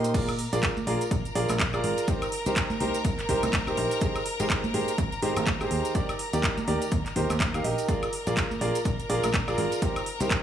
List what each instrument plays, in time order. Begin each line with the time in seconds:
Already playing: fingered electric bass A#2, grand piano D#4 G4 A#4 D#5, string section C5 C6
0.04 closed hi-hat, tambourine, shaker
0.14 grand piano F4 G#4 A#4 D5, string section A#4 A#5, kick, closed hi-hat, tambourine, crash, shaker
0.29 closed hi-hat, tambourine, high woodblock, shaker
0.39 open hi-hat
0.53 fingered electric bass A#1, grand piano F4 G#4 A#4 D5, closed hi-hat, tambourine, shaker
0.63 kick, clap, closed hi-hat, shaker
0.77 tambourine, high conga, shaker
0.87 fingered electric bass A#1, grand piano F4 G#4 A#4 D5, open hi-hat
1.01 closed hi-hat, tambourine, shaker
1.11 fingered electric bass A#1, kick, closed hi-hat, tambourine, shaker
1.25 closed hi-hat, tambourine, shaker
1.35 fingered electric bass A#1, grand piano F4 G#4 A#4 D5, open hi-hat
1.49 fingered electric bass A#1, closed hi-hat, tambourine, high conga, high woodblock, shaker
1.59 kick, clap, closed hi-hat, tambourine, shaker
1.73 grand piano F4 G#4 A#4 D5, tambourine, high woodblock, shaker
1.84 fingered electric bass G#1, open hi-hat
1.97 closed hi-hat, tambourine, shaker
2.07 grand piano D#4 G4 A#4 C5, kick, closed hi-hat, tambourine, shaker
2.22 closed hi-hat, tambourine, high woodblock, shaker
2.32 open hi-hat
2.46 fingered electric bass C2, grand piano D#4 G4 A#4 C5, closed hi-hat, tambourine, shaker
2.56 kick, clap, closed hi-hat, tambourine, shaker
2.70 tambourine, high conga, shaker
2.80 fingered electric bass C2, grand piano D#4 G4 A#4 C5, open hi-hat
2.94 closed hi-hat, tambourine, shaker
3.05 fingered electric bass C2, kick, closed hi-hat, tambourine, shaker
3.19 clap, closed hi-hat, tambourine, shaker
3.29 fingered electric bass C2, grand piano D#4 G4 A#4 C5, kick, open hi-hat
3.43 fingered electric bass C2, closed hi-hat, tambourine, high conga, high woodblock, shaker
3.53 kick, clap, closed hi-hat, tambourine, shaker
3.67 grand piano D#4 G4 A#4 C5, tambourine, high woodblock, shaker
3.77 fingered electric bass A#1, open hi-hat
3.91 closed hi-hat, tambourine, shaker
4.01 grand piano D#4 G4 G#4 C5, kick, closed hi-hat, tambourine, shaker
4.16 closed hi-hat, tambourine, high woodblock, shaker
4.26 open hi-hat
4.40 fingered electric bass G#1, grand piano D#4 G4 G#4 C5, closed hi-hat, tambourine, shaker
4.50 kick, clap, closed hi-hat, tambourine, shaker
4.64 tambourine, high conga, shaker
4.74 fingered electric bass G#1, grand piano D#4 G4 G#4 C5, open hi-hat
4.88 closed hi-hat, tambourine, shaker
4.98 fingered electric bass G#1, kick, closed hi-hat, tambourine, shaker
5.12 closed hi-hat, tambourine, shaker
5.22 fingered electric bass G#1, grand piano D#4 G4 G#4 C5, open hi-hat
5.36 fingered electric bass G#1, closed hi-hat, tambourine, high conga, high woodblock, shaker
5.46 kick, clap, closed hi-hat, tambourine, shaker
5.60 grand piano D#4 G4 G#4 C5, tambourine, high woodblock, shaker
5.71 fingered electric bass D#2, open hi-hat
5.85 closed hi-hat, tambourine, shaker
5.95 grand piano D#4 G4 A#4 D5, kick, closed hi-hat, tambourine, shaker
6.09 closed hi-hat, tambourine, high woodblock, shaker
6.19 open hi-hat
6.33 fingered electric bass D#2, grand piano D#4 G4 A#4 D5, closed hi-hat, tambourine, shaker
6.43 kick, clap, closed hi-hat, tambourine, shaker
6.57 closed hi-hat, tambourine, high conga, shaker
6.68 fingered electric bass D#2, grand piano D#4 G4 A#4 D5, open hi-hat
6.82 closed hi-hat, tambourine, shaker
6.91 fingered electric bass D#2, kick, closed hi-hat, tambourine, shaker
7.06 clap, closed hi-hat, tambourine, shaker
7.16 fingered electric bass D#2, grand piano D#4 G4 A#4 C5, kick, open hi-hat
7.30 fingered electric bass D#2, closed hi-hat, tambourine, high conga, high woodblock, shaker
7.40 kick, clap, closed hi-hat, tambourine, shaker
7.54 grand piano D#4 G4 A#4 F5, closed hi-hat, tambourine, high woodblock, shaker
7.64 fingered electric bass A#1, grand piano D#4 G4 A#4 D#5, open hi-hat
7.78 closed hi-hat, tambourine, shaker
7.88 grand piano F4 G#4 A#4 D5, string section A#4 A#5, kick, closed hi-hat, tambourine, shaker
8.03 closed hi-hat, tambourine, high woodblock, shaker
8.13 open hi-hat
8.27 fingered electric bass A#1, grand piano F4 G#4 A#4 D5, closed hi-hat, tambourine, shaker
8.36 kick, clap, closed hi-hat, tambourine, shaker
8.51 tambourine, high conga, shaker
8.61 fingered electric bass A#1, grand piano F4 G#4 A#4 D5, open hi-hat
8.75 closed hi-hat, tambourine, shaker
8.85 fingered electric bass A#1, kick, closed hi-hat, tambourine, shaker
9.00 closed hi-hat, tambourine, shaker
9.09 fingered electric bass A#1, grand piano F4 G#4 A#4 D5, open hi-hat
9.23 fingered electric bass A#1, closed hi-hat, tambourine, high conga, high woodblock, shaker
9.34 kick, clap, closed hi-hat, tambourine, shaker
9.48 grand piano F4 G#4 A#4 D5, tambourine, high woodblock, shaker
9.58 fingered electric bass G#1, open hi-hat
9.72 closed hi-hat, tambourine, shaker
9.82 grand piano D#4 G4 A#4 C5, kick, closed hi-hat, tambourine, shaker
9.96 closed hi-hat, tambourine, high woodblock, shaker
10.06 open hi-hat
10.20 fingered electric bass C2, grand piano D#4 G4 A#4 C5, closed hi-hat, tambourine, shaker
10.30 kick, clap, closed hi-hat, tambourine, shaker